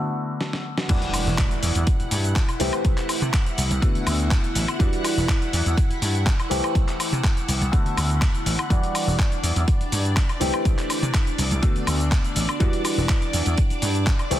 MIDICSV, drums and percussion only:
0, 0, Header, 1, 2, 480
1, 0, Start_track
1, 0, Key_signature, 1, "minor"
1, 0, Tempo, 487805
1, 883, Time_signature, 4, 2, 24, 8
1, 14166, End_track
2, 0, Start_track
2, 0, Title_t, "Drums"
2, 400, Note_on_c, 9, 38, 57
2, 498, Note_off_c, 9, 38, 0
2, 524, Note_on_c, 9, 38, 59
2, 623, Note_off_c, 9, 38, 0
2, 763, Note_on_c, 9, 38, 77
2, 861, Note_off_c, 9, 38, 0
2, 878, Note_on_c, 9, 42, 82
2, 878, Note_on_c, 9, 49, 100
2, 882, Note_on_c, 9, 36, 118
2, 882, Note_on_c, 9, 82, 44
2, 976, Note_off_c, 9, 42, 0
2, 976, Note_off_c, 9, 49, 0
2, 980, Note_off_c, 9, 36, 0
2, 980, Note_off_c, 9, 82, 0
2, 1003, Note_on_c, 9, 42, 53
2, 1007, Note_on_c, 9, 82, 22
2, 1101, Note_off_c, 9, 42, 0
2, 1105, Note_off_c, 9, 82, 0
2, 1117, Note_on_c, 9, 46, 104
2, 1117, Note_on_c, 9, 76, 64
2, 1122, Note_on_c, 9, 82, 79
2, 1216, Note_off_c, 9, 46, 0
2, 1216, Note_off_c, 9, 76, 0
2, 1220, Note_off_c, 9, 82, 0
2, 1249, Note_on_c, 9, 82, 34
2, 1347, Note_off_c, 9, 82, 0
2, 1359, Note_on_c, 9, 42, 82
2, 1361, Note_on_c, 9, 36, 119
2, 1361, Note_on_c, 9, 39, 121
2, 1363, Note_on_c, 9, 82, 43
2, 1458, Note_off_c, 9, 42, 0
2, 1459, Note_off_c, 9, 39, 0
2, 1460, Note_off_c, 9, 36, 0
2, 1462, Note_off_c, 9, 82, 0
2, 1486, Note_on_c, 9, 42, 38
2, 1490, Note_on_c, 9, 82, 22
2, 1585, Note_off_c, 9, 42, 0
2, 1589, Note_off_c, 9, 82, 0
2, 1600, Note_on_c, 9, 46, 106
2, 1604, Note_on_c, 9, 82, 79
2, 1698, Note_off_c, 9, 46, 0
2, 1703, Note_off_c, 9, 82, 0
2, 1724, Note_on_c, 9, 42, 56
2, 1728, Note_on_c, 9, 82, 34
2, 1823, Note_off_c, 9, 42, 0
2, 1827, Note_off_c, 9, 82, 0
2, 1838, Note_on_c, 9, 42, 83
2, 1841, Note_on_c, 9, 36, 119
2, 1842, Note_on_c, 9, 82, 45
2, 1937, Note_off_c, 9, 42, 0
2, 1940, Note_off_c, 9, 36, 0
2, 1941, Note_off_c, 9, 82, 0
2, 1965, Note_on_c, 9, 42, 37
2, 1969, Note_on_c, 9, 82, 21
2, 2064, Note_off_c, 9, 42, 0
2, 2068, Note_off_c, 9, 82, 0
2, 2078, Note_on_c, 9, 46, 108
2, 2082, Note_on_c, 9, 82, 79
2, 2177, Note_off_c, 9, 46, 0
2, 2181, Note_off_c, 9, 82, 0
2, 2207, Note_on_c, 9, 42, 38
2, 2211, Note_on_c, 9, 82, 34
2, 2305, Note_off_c, 9, 42, 0
2, 2309, Note_off_c, 9, 82, 0
2, 2320, Note_on_c, 9, 42, 85
2, 2321, Note_on_c, 9, 36, 118
2, 2322, Note_on_c, 9, 39, 123
2, 2324, Note_on_c, 9, 82, 45
2, 2419, Note_off_c, 9, 36, 0
2, 2419, Note_off_c, 9, 42, 0
2, 2420, Note_off_c, 9, 39, 0
2, 2423, Note_off_c, 9, 82, 0
2, 2446, Note_on_c, 9, 42, 39
2, 2446, Note_on_c, 9, 76, 66
2, 2450, Note_on_c, 9, 82, 23
2, 2544, Note_off_c, 9, 42, 0
2, 2544, Note_off_c, 9, 76, 0
2, 2548, Note_off_c, 9, 82, 0
2, 2557, Note_on_c, 9, 46, 108
2, 2561, Note_on_c, 9, 82, 79
2, 2656, Note_off_c, 9, 46, 0
2, 2660, Note_off_c, 9, 82, 0
2, 2685, Note_on_c, 9, 42, 38
2, 2685, Note_on_c, 9, 76, 74
2, 2689, Note_on_c, 9, 82, 33
2, 2783, Note_off_c, 9, 42, 0
2, 2783, Note_off_c, 9, 76, 0
2, 2787, Note_off_c, 9, 82, 0
2, 2801, Note_on_c, 9, 42, 78
2, 2802, Note_on_c, 9, 36, 123
2, 2805, Note_on_c, 9, 82, 42
2, 2899, Note_off_c, 9, 42, 0
2, 2900, Note_off_c, 9, 36, 0
2, 2903, Note_off_c, 9, 82, 0
2, 2926, Note_on_c, 9, 42, 53
2, 2928, Note_on_c, 9, 39, 39
2, 2930, Note_on_c, 9, 82, 21
2, 3025, Note_off_c, 9, 42, 0
2, 3026, Note_off_c, 9, 39, 0
2, 3029, Note_off_c, 9, 82, 0
2, 3041, Note_on_c, 9, 46, 108
2, 3041, Note_on_c, 9, 76, 63
2, 3045, Note_on_c, 9, 82, 76
2, 3139, Note_off_c, 9, 46, 0
2, 3139, Note_off_c, 9, 76, 0
2, 3143, Note_off_c, 9, 82, 0
2, 3168, Note_on_c, 9, 42, 39
2, 3172, Note_on_c, 9, 82, 32
2, 3266, Note_off_c, 9, 42, 0
2, 3270, Note_off_c, 9, 82, 0
2, 3281, Note_on_c, 9, 36, 119
2, 3282, Note_on_c, 9, 42, 79
2, 3283, Note_on_c, 9, 39, 120
2, 3286, Note_on_c, 9, 82, 43
2, 3380, Note_off_c, 9, 36, 0
2, 3380, Note_off_c, 9, 42, 0
2, 3382, Note_off_c, 9, 39, 0
2, 3384, Note_off_c, 9, 82, 0
2, 3408, Note_on_c, 9, 42, 37
2, 3412, Note_on_c, 9, 82, 21
2, 3506, Note_off_c, 9, 42, 0
2, 3510, Note_off_c, 9, 82, 0
2, 3522, Note_on_c, 9, 46, 113
2, 3526, Note_on_c, 9, 82, 78
2, 3620, Note_off_c, 9, 46, 0
2, 3624, Note_off_c, 9, 82, 0
2, 3648, Note_on_c, 9, 42, 53
2, 3652, Note_on_c, 9, 82, 32
2, 3747, Note_off_c, 9, 42, 0
2, 3751, Note_off_c, 9, 82, 0
2, 3762, Note_on_c, 9, 36, 123
2, 3763, Note_on_c, 9, 42, 80
2, 3767, Note_on_c, 9, 82, 44
2, 3861, Note_off_c, 9, 36, 0
2, 3861, Note_off_c, 9, 42, 0
2, 3865, Note_off_c, 9, 82, 0
2, 3889, Note_on_c, 9, 42, 38
2, 3893, Note_on_c, 9, 82, 22
2, 3987, Note_off_c, 9, 42, 0
2, 3991, Note_off_c, 9, 82, 0
2, 4001, Note_on_c, 9, 46, 112
2, 4001, Note_on_c, 9, 76, 81
2, 4006, Note_on_c, 9, 82, 77
2, 4100, Note_off_c, 9, 46, 0
2, 4100, Note_off_c, 9, 76, 0
2, 4104, Note_off_c, 9, 82, 0
2, 4129, Note_on_c, 9, 42, 37
2, 4133, Note_on_c, 9, 82, 32
2, 4228, Note_off_c, 9, 42, 0
2, 4232, Note_off_c, 9, 82, 0
2, 4242, Note_on_c, 9, 36, 127
2, 4242, Note_on_c, 9, 42, 80
2, 4243, Note_on_c, 9, 39, 127
2, 4246, Note_on_c, 9, 82, 43
2, 4340, Note_off_c, 9, 42, 0
2, 4341, Note_off_c, 9, 36, 0
2, 4342, Note_off_c, 9, 39, 0
2, 4344, Note_off_c, 9, 82, 0
2, 4369, Note_on_c, 9, 42, 39
2, 4373, Note_on_c, 9, 82, 22
2, 4467, Note_off_c, 9, 42, 0
2, 4471, Note_off_c, 9, 82, 0
2, 4482, Note_on_c, 9, 46, 113
2, 4486, Note_on_c, 9, 82, 77
2, 4580, Note_off_c, 9, 46, 0
2, 4584, Note_off_c, 9, 82, 0
2, 4609, Note_on_c, 9, 42, 37
2, 4609, Note_on_c, 9, 76, 74
2, 4613, Note_on_c, 9, 82, 32
2, 4707, Note_off_c, 9, 42, 0
2, 4707, Note_off_c, 9, 76, 0
2, 4711, Note_off_c, 9, 82, 0
2, 4722, Note_on_c, 9, 36, 126
2, 4724, Note_on_c, 9, 42, 76
2, 4728, Note_on_c, 9, 82, 43
2, 4821, Note_off_c, 9, 36, 0
2, 4822, Note_off_c, 9, 42, 0
2, 4826, Note_off_c, 9, 82, 0
2, 4850, Note_on_c, 9, 42, 51
2, 4854, Note_on_c, 9, 82, 22
2, 4948, Note_off_c, 9, 42, 0
2, 4952, Note_off_c, 9, 82, 0
2, 4964, Note_on_c, 9, 46, 115
2, 4964, Note_on_c, 9, 76, 65
2, 4968, Note_on_c, 9, 82, 78
2, 5062, Note_off_c, 9, 46, 0
2, 5062, Note_off_c, 9, 76, 0
2, 5067, Note_off_c, 9, 82, 0
2, 5095, Note_on_c, 9, 82, 33
2, 5193, Note_off_c, 9, 82, 0
2, 5203, Note_on_c, 9, 36, 127
2, 5208, Note_on_c, 9, 39, 122
2, 5210, Note_on_c, 9, 82, 43
2, 5301, Note_off_c, 9, 36, 0
2, 5306, Note_off_c, 9, 39, 0
2, 5308, Note_off_c, 9, 82, 0
2, 5333, Note_on_c, 9, 42, 36
2, 5338, Note_on_c, 9, 82, 21
2, 5432, Note_off_c, 9, 42, 0
2, 5436, Note_off_c, 9, 82, 0
2, 5444, Note_on_c, 9, 46, 115
2, 5449, Note_on_c, 9, 82, 76
2, 5543, Note_off_c, 9, 46, 0
2, 5547, Note_off_c, 9, 82, 0
2, 5571, Note_on_c, 9, 42, 52
2, 5575, Note_on_c, 9, 82, 32
2, 5669, Note_off_c, 9, 42, 0
2, 5673, Note_off_c, 9, 82, 0
2, 5683, Note_on_c, 9, 36, 127
2, 5685, Note_on_c, 9, 42, 77
2, 5689, Note_on_c, 9, 82, 42
2, 5781, Note_off_c, 9, 36, 0
2, 5784, Note_off_c, 9, 42, 0
2, 5788, Note_off_c, 9, 82, 0
2, 5811, Note_on_c, 9, 42, 35
2, 5815, Note_on_c, 9, 82, 20
2, 5909, Note_off_c, 9, 42, 0
2, 5913, Note_off_c, 9, 82, 0
2, 5925, Note_on_c, 9, 46, 114
2, 5929, Note_on_c, 9, 82, 75
2, 6023, Note_off_c, 9, 46, 0
2, 6027, Note_off_c, 9, 82, 0
2, 6051, Note_on_c, 9, 42, 36
2, 6055, Note_on_c, 9, 82, 31
2, 6150, Note_off_c, 9, 42, 0
2, 6154, Note_off_c, 9, 82, 0
2, 6163, Note_on_c, 9, 36, 126
2, 6165, Note_on_c, 9, 42, 76
2, 6167, Note_on_c, 9, 39, 121
2, 6169, Note_on_c, 9, 82, 43
2, 6262, Note_off_c, 9, 36, 0
2, 6263, Note_off_c, 9, 42, 0
2, 6265, Note_off_c, 9, 39, 0
2, 6267, Note_off_c, 9, 82, 0
2, 6293, Note_on_c, 9, 42, 35
2, 6293, Note_on_c, 9, 76, 67
2, 6297, Note_on_c, 9, 82, 21
2, 6392, Note_off_c, 9, 42, 0
2, 6392, Note_off_c, 9, 76, 0
2, 6396, Note_off_c, 9, 82, 0
2, 6406, Note_on_c, 9, 46, 109
2, 6410, Note_on_c, 9, 82, 76
2, 6504, Note_off_c, 9, 46, 0
2, 6508, Note_off_c, 9, 82, 0
2, 6534, Note_on_c, 9, 42, 36
2, 6534, Note_on_c, 9, 76, 76
2, 6538, Note_on_c, 9, 82, 32
2, 6632, Note_off_c, 9, 42, 0
2, 6632, Note_off_c, 9, 76, 0
2, 6636, Note_off_c, 9, 82, 0
2, 6644, Note_on_c, 9, 36, 124
2, 6648, Note_on_c, 9, 42, 74
2, 6652, Note_on_c, 9, 82, 44
2, 6743, Note_off_c, 9, 36, 0
2, 6746, Note_off_c, 9, 42, 0
2, 6750, Note_off_c, 9, 82, 0
2, 6773, Note_on_c, 9, 42, 50
2, 6775, Note_on_c, 9, 39, 36
2, 6777, Note_on_c, 9, 82, 21
2, 6871, Note_off_c, 9, 42, 0
2, 6873, Note_off_c, 9, 39, 0
2, 6876, Note_off_c, 9, 82, 0
2, 6887, Note_on_c, 9, 46, 113
2, 6887, Note_on_c, 9, 76, 68
2, 6891, Note_on_c, 9, 82, 75
2, 6986, Note_off_c, 9, 46, 0
2, 6986, Note_off_c, 9, 76, 0
2, 6990, Note_off_c, 9, 82, 0
2, 7013, Note_on_c, 9, 42, 36
2, 7017, Note_on_c, 9, 82, 33
2, 7112, Note_off_c, 9, 42, 0
2, 7116, Note_off_c, 9, 82, 0
2, 7125, Note_on_c, 9, 36, 121
2, 7126, Note_on_c, 9, 42, 75
2, 7127, Note_on_c, 9, 39, 116
2, 7130, Note_on_c, 9, 82, 44
2, 7223, Note_off_c, 9, 36, 0
2, 7224, Note_off_c, 9, 42, 0
2, 7226, Note_off_c, 9, 39, 0
2, 7228, Note_off_c, 9, 82, 0
2, 7252, Note_on_c, 9, 42, 34
2, 7256, Note_on_c, 9, 82, 22
2, 7351, Note_off_c, 9, 42, 0
2, 7355, Note_off_c, 9, 82, 0
2, 7365, Note_on_c, 9, 46, 112
2, 7369, Note_on_c, 9, 82, 75
2, 7464, Note_off_c, 9, 46, 0
2, 7468, Note_off_c, 9, 82, 0
2, 7494, Note_on_c, 9, 42, 50
2, 7498, Note_on_c, 9, 82, 33
2, 7592, Note_off_c, 9, 42, 0
2, 7596, Note_off_c, 9, 82, 0
2, 7606, Note_on_c, 9, 36, 126
2, 7607, Note_on_c, 9, 42, 75
2, 7611, Note_on_c, 9, 82, 44
2, 7704, Note_off_c, 9, 36, 0
2, 7705, Note_off_c, 9, 42, 0
2, 7709, Note_off_c, 9, 82, 0
2, 7734, Note_on_c, 9, 42, 34
2, 7738, Note_on_c, 9, 82, 22
2, 7833, Note_off_c, 9, 42, 0
2, 7837, Note_off_c, 9, 82, 0
2, 7847, Note_on_c, 9, 46, 108
2, 7847, Note_on_c, 9, 76, 87
2, 7851, Note_on_c, 9, 82, 76
2, 7945, Note_off_c, 9, 46, 0
2, 7945, Note_off_c, 9, 76, 0
2, 7949, Note_off_c, 9, 82, 0
2, 7971, Note_on_c, 9, 42, 35
2, 7976, Note_on_c, 9, 82, 32
2, 8070, Note_off_c, 9, 42, 0
2, 8074, Note_off_c, 9, 82, 0
2, 8085, Note_on_c, 9, 42, 76
2, 8086, Note_on_c, 9, 36, 125
2, 8087, Note_on_c, 9, 39, 119
2, 8089, Note_on_c, 9, 82, 44
2, 8184, Note_off_c, 9, 36, 0
2, 8184, Note_off_c, 9, 42, 0
2, 8185, Note_off_c, 9, 39, 0
2, 8188, Note_off_c, 9, 82, 0
2, 8212, Note_on_c, 9, 42, 36
2, 8216, Note_on_c, 9, 82, 21
2, 8310, Note_off_c, 9, 42, 0
2, 8314, Note_off_c, 9, 82, 0
2, 8327, Note_on_c, 9, 46, 109
2, 8331, Note_on_c, 9, 82, 76
2, 8425, Note_off_c, 9, 46, 0
2, 8429, Note_off_c, 9, 82, 0
2, 8453, Note_on_c, 9, 42, 35
2, 8453, Note_on_c, 9, 76, 80
2, 8457, Note_on_c, 9, 82, 32
2, 8551, Note_off_c, 9, 42, 0
2, 8551, Note_off_c, 9, 76, 0
2, 8555, Note_off_c, 9, 82, 0
2, 8564, Note_on_c, 9, 36, 120
2, 8569, Note_on_c, 9, 42, 76
2, 8573, Note_on_c, 9, 82, 45
2, 8663, Note_off_c, 9, 36, 0
2, 8667, Note_off_c, 9, 42, 0
2, 8671, Note_off_c, 9, 82, 0
2, 8693, Note_on_c, 9, 42, 50
2, 8697, Note_on_c, 9, 82, 22
2, 8791, Note_off_c, 9, 42, 0
2, 8795, Note_off_c, 9, 82, 0
2, 8806, Note_on_c, 9, 46, 105
2, 8806, Note_on_c, 9, 76, 69
2, 8810, Note_on_c, 9, 82, 79
2, 8904, Note_off_c, 9, 46, 0
2, 8904, Note_off_c, 9, 76, 0
2, 8908, Note_off_c, 9, 82, 0
2, 8937, Note_on_c, 9, 82, 34
2, 9035, Note_off_c, 9, 82, 0
2, 9044, Note_on_c, 9, 36, 117
2, 9046, Note_on_c, 9, 42, 77
2, 9048, Note_on_c, 9, 39, 115
2, 9050, Note_on_c, 9, 82, 44
2, 9142, Note_off_c, 9, 36, 0
2, 9145, Note_off_c, 9, 42, 0
2, 9146, Note_off_c, 9, 39, 0
2, 9149, Note_off_c, 9, 82, 0
2, 9170, Note_on_c, 9, 42, 35
2, 9174, Note_on_c, 9, 82, 23
2, 9269, Note_off_c, 9, 42, 0
2, 9273, Note_off_c, 9, 82, 0
2, 9284, Note_on_c, 9, 46, 105
2, 9289, Note_on_c, 9, 82, 78
2, 9383, Note_off_c, 9, 46, 0
2, 9387, Note_off_c, 9, 82, 0
2, 9409, Note_on_c, 9, 42, 50
2, 9413, Note_on_c, 9, 82, 34
2, 9508, Note_off_c, 9, 42, 0
2, 9512, Note_off_c, 9, 82, 0
2, 9523, Note_on_c, 9, 42, 80
2, 9524, Note_on_c, 9, 36, 118
2, 9527, Note_on_c, 9, 82, 47
2, 9621, Note_off_c, 9, 42, 0
2, 9622, Note_off_c, 9, 36, 0
2, 9625, Note_off_c, 9, 82, 0
2, 9650, Note_on_c, 9, 42, 35
2, 9654, Note_on_c, 9, 82, 22
2, 9748, Note_off_c, 9, 42, 0
2, 9752, Note_off_c, 9, 82, 0
2, 9764, Note_on_c, 9, 46, 104
2, 9768, Note_on_c, 9, 82, 81
2, 9862, Note_off_c, 9, 46, 0
2, 9866, Note_off_c, 9, 82, 0
2, 9891, Note_on_c, 9, 42, 35
2, 9895, Note_on_c, 9, 82, 34
2, 9989, Note_off_c, 9, 42, 0
2, 9993, Note_off_c, 9, 82, 0
2, 10003, Note_on_c, 9, 36, 122
2, 10003, Note_on_c, 9, 42, 77
2, 10005, Note_on_c, 9, 39, 113
2, 10007, Note_on_c, 9, 82, 45
2, 10101, Note_off_c, 9, 36, 0
2, 10101, Note_off_c, 9, 42, 0
2, 10103, Note_off_c, 9, 39, 0
2, 10105, Note_off_c, 9, 82, 0
2, 10129, Note_on_c, 9, 42, 37
2, 10129, Note_on_c, 9, 76, 70
2, 10133, Note_on_c, 9, 82, 23
2, 10227, Note_off_c, 9, 42, 0
2, 10227, Note_off_c, 9, 76, 0
2, 10231, Note_off_c, 9, 82, 0
2, 10242, Note_on_c, 9, 46, 108
2, 10246, Note_on_c, 9, 82, 82
2, 10340, Note_off_c, 9, 46, 0
2, 10344, Note_off_c, 9, 82, 0
2, 10368, Note_on_c, 9, 42, 34
2, 10368, Note_on_c, 9, 76, 83
2, 10372, Note_on_c, 9, 82, 34
2, 10466, Note_off_c, 9, 42, 0
2, 10466, Note_off_c, 9, 76, 0
2, 10470, Note_off_c, 9, 82, 0
2, 10483, Note_on_c, 9, 36, 114
2, 10483, Note_on_c, 9, 42, 78
2, 10487, Note_on_c, 9, 82, 48
2, 10581, Note_off_c, 9, 36, 0
2, 10581, Note_off_c, 9, 42, 0
2, 10585, Note_off_c, 9, 82, 0
2, 10611, Note_on_c, 9, 42, 51
2, 10612, Note_on_c, 9, 39, 34
2, 10615, Note_on_c, 9, 82, 23
2, 10709, Note_off_c, 9, 42, 0
2, 10711, Note_off_c, 9, 39, 0
2, 10713, Note_off_c, 9, 82, 0
2, 10725, Note_on_c, 9, 46, 102
2, 10725, Note_on_c, 9, 76, 68
2, 10729, Note_on_c, 9, 82, 84
2, 10823, Note_off_c, 9, 46, 0
2, 10823, Note_off_c, 9, 76, 0
2, 10827, Note_off_c, 9, 82, 0
2, 10852, Note_on_c, 9, 42, 37
2, 10856, Note_on_c, 9, 82, 35
2, 10950, Note_off_c, 9, 42, 0
2, 10955, Note_off_c, 9, 82, 0
2, 10964, Note_on_c, 9, 36, 118
2, 10965, Note_on_c, 9, 42, 78
2, 10966, Note_on_c, 9, 39, 108
2, 10969, Note_on_c, 9, 82, 47
2, 11062, Note_off_c, 9, 36, 0
2, 11063, Note_off_c, 9, 42, 0
2, 11065, Note_off_c, 9, 39, 0
2, 11067, Note_off_c, 9, 82, 0
2, 11090, Note_on_c, 9, 42, 37
2, 11094, Note_on_c, 9, 82, 23
2, 11188, Note_off_c, 9, 42, 0
2, 11192, Note_off_c, 9, 82, 0
2, 11202, Note_on_c, 9, 46, 104
2, 11206, Note_on_c, 9, 82, 82
2, 11301, Note_off_c, 9, 46, 0
2, 11305, Note_off_c, 9, 82, 0
2, 11328, Note_on_c, 9, 42, 52
2, 11332, Note_on_c, 9, 82, 36
2, 11426, Note_off_c, 9, 42, 0
2, 11430, Note_off_c, 9, 82, 0
2, 11440, Note_on_c, 9, 42, 80
2, 11443, Note_on_c, 9, 36, 116
2, 11445, Note_on_c, 9, 82, 49
2, 11539, Note_off_c, 9, 42, 0
2, 11542, Note_off_c, 9, 36, 0
2, 11543, Note_off_c, 9, 82, 0
2, 11569, Note_on_c, 9, 42, 37
2, 11573, Note_on_c, 9, 82, 23
2, 11668, Note_off_c, 9, 42, 0
2, 11672, Note_off_c, 9, 82, 0
2, 11681, Note_on_c, 9, 46, 104
2, 11681, Note_on_c, 9, 76, 90
2, 11686, Note_on_c, 9, 82, 81
2, 11780, Note_off_c, 9, 46, 0
2, 11780, Note_off_c, 9, 76, 0
2, 11784, Note_off_c, 9, 82, 0
2, 11809, Note_on_c, 9, 42, 35
2, 11813, Note_on_c, 9, 82, 36
2, 11907, Note_off_c, 9, 42, 0
2, 11911, Note_off_c, 9, 82, 0
2, 11923, Note_on_c, 9, 36, 119
2, 11923, Note_on_c, 9, 42, 82
2, 11925, Note_on_c, 9, 39, 117
2, 11927, Note_on_c, 9, 82, 47
2, 12022, Note_off_c, 9, 36, 0
2, 12022, Note_off_c, 9, 42, 0
2, 12023, Note_off_c, 9, 39, 0
2, 12026, Note_off_c, 9, 82, 0
2, 12048, Note_on_c, 9, 42, 37
2, 12053, Note_on_c, 9, 82, 24
2, 12147, Note_off_c, 9, 42, 0
2, 12151, Note_off_c, 9, 82, 0
2, 12161, Note_on_c, 9, 46, 102
2, 12165, Note_on_c, 9, 82, 82
2, 12259, Note_off_c, 9, 46, 0
2, 12263, Note_off_c, 9, 82, 0
2, 12288, Note_on_c, 9, 42, 37
2, 12288, Note_on_c, 9, 76, 83
2, 12292, Note_on_c, 9, 82, 36
2, 12387, Note_off_c, 9, 42, 0
2, 12387, Note_off_c, 9, 76, 0
2, 12391, Note_off_c, 9, 82, 0
2, 12401, Note_on_c, 9, 42, 81
2, 12403, Note_on_c, 9, 36, 117
2, 12405, Note_on_c, 9, 82, 47
2, 12500, Note_off_c, 9, 42, 0
2, 12502, Note_off_c, 9, 36, 0
2, 12504, Note_off_c, 9, 82, 0
2, 12527, Note_on_c, 9, 42, 54
2, 12531, Note_on_c, 9, 82, 23
2, 12626, Note_off_c, 9, 42, 0
2, 12630, Note_off_c, 9, 82, 0
2, 12641, Note_on_c, 9, 46, 104
2, 12641, Note_on_c, 9, 76, 69
2, 12645, Note_on_c, 9, 82, 82
2, 12740, Note_off_c, 9, 46, 0
2, 12740, Note_off_c, 9, 76, 0
2, 12744, Note_off_c, 9, 82, 0
2, 12772, Note_on_c, 9, 82, 36
2, 12870, Note_off_c, 9, 82, 0
2, 12880, Note_on_c, 9, 42, 82
2, 12882, Note_on_c, 9, 39, 114
2, 12883, Note_on_c, 9, 36, 113
2, 12885, Note_on_c, 9, 82, 47
2, 12979, Note_off_c, 9, 42, 0
2, 12980, Note_off_c, 9, 39, 0
2, 12982, Note_off_c, 9, 36, 0
2, 12983, Note_off_c, 9, 82, 0
2, 13007, Note_on_c, 9, 42, 38
2, 13011, Note_on_c, 9, 82, 24
2, 13106, Note_off_c, 9, 42, 0
2, 13110, Note_off_c, 9, 82, 0
2, 13120, Note_on_c, 9, 46, 101
2, 13124, Note_on_c, 9, 82, 85
2, 13219, Note_off_c, 9, 46, 0
2, 13223, Note_off_c, 9, 82, 0
2, 13244, Note_on_c, 9, 42, 54
2, 13248, Note_on_c, 9, 82, 36
2, 13343, Note_off_c, 9, 42, 0
2, 13347, Note_off_c, 9, 82, 0
2, 13358, Note_on_c, 9, 42, 86
2, 13363, Note_on_c, 9, 36, 119
2, 13363, Note_on_c, 9, 82, 49
2, 13457, Note_off_c, 9, 42, 0
2, 13461, Note_off_c, 9, 36, 0
2, 13461, Note_off_c, 9, 82, 0
2, 13485, Note_on_c, 9, 42, 38
2, 13489, Note_on_c, 9, 82, 23
2, 13583, Note_off_c, 9, 42, 0
2, 13587, Note_off_c, 9, 82, 0
2, 13599, Note_on_c, 9, 46, 102
2, 13604, Note_on_c, 9, 82, 81
2, 13698, Note_off_c, 9, 46, 0
2, 13702, Note_off_c, 9, 82, 0
2, 13727, Note_on_c, 9, 42, 38
2, 13731, Note_on_c, 9, 82, 36
2, 13825, Note_off_c, 9, 42, 0
2, 13830, Note_off_c, 9, 82, 0
2, 13841, Note_on_c, 9, 42, 80
2, 13842, Note_on_c, 9, 36, 119
2, 13843, Note_on_c, 9, 39, 116
2, 13845, Note_on_c, 9, 82, 48
2, 13939, Note_off_c, 9, 42, 0
2, 13941, Note_off_c, 9, 36, 0
2, 13941, Note_off_c, 9, 39, 0
2, 13943, Note_off_c, 9, 82, 0
2, 13965, Note_on_c, 9, 42, 37
2, 13965, Note_on_c, 9, 76, 69
2, 13969, Note_on_c, 9, 82, 23
2, 14063, Note_off_c, 9, 42, 0
2, 14063, Note_off_c, 9, 76, 0
2, 14067, Note_off_c, 9, 82, 0
2, 14081, Note_on_c, 9, 46, 99
2, 14085, Note_on_c, 9, 82, 84
2, 14166, Note_off_c, 9, 46, 0
2, 14166, Note_off_c, 9, 82, 0
2, 14166, End_track
0, 0, End_of_file